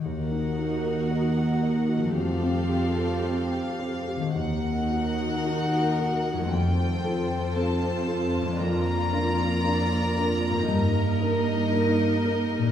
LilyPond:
<<
  \new Staff \with { instrumentName = "Violin section" } { \time 4/4 \key ees \lydian \tempo 4 = 57 r2. f''4 | ges''2 g''4 a''4 | bes''2. r4 | }
  \new Staff \with { instrumentName = "Violin section" } { \time 4/4 \key ees \lydian << { ges''2 f''2 | ges''2 c''2 | d''2 ees''2 | } \\ { bes'2 a'2 | bes'2 a'2 | bes'1 | } >> }
  \new Staff \with { instrumentName = "Grand piano" } { \time 4/4 \key ees \lydian ees,16 ees'16 ges'16 bes'16 ees''16 ges''16 ees''16 ges'16 f,16 c'16 g'16 a'16 c''16 g''16 c''16 g'16 | ees,8 <ges' bes'>8 <ees' ges' bes'>8 <ges' bes'>8 f,8 <f' a'>8 <c' f' a'>8 <f' a'>8 | f,8 <d' bes'>8 <bes d' bes'>8 <d' bes'>8 g,8 <ees' bes'>8 <bes ees' bes'>8 <ees' bes'>8 | }
  \new Staff \with { instrumentName = "Viola section" } { \time 4/4 \key ees \lydian << { ges'2 g'2 | ges'2 f'2~ | f'2 ees'2 | } \\ { ees'2 c'2 | ees'2 c'2 | bes1 | } >> }
  \new Staff \with { instrumentName = "Harp" } { \time 4/4 \key ees \lydian <ees bes ees' ges'>2 <f a c' g'>2 | <ees bes ees' ges'>2 <f, a c' f'>2 | <f, bes d' f'>2 <g, bes ees'>2 | }
  \new Staff \with { instrumentName = "Cello section" } { \clef bass \time 4/4 \key ees \lydian ees,2 f,2 | ees,2 f,2~ | f,2 g,2 | }
>>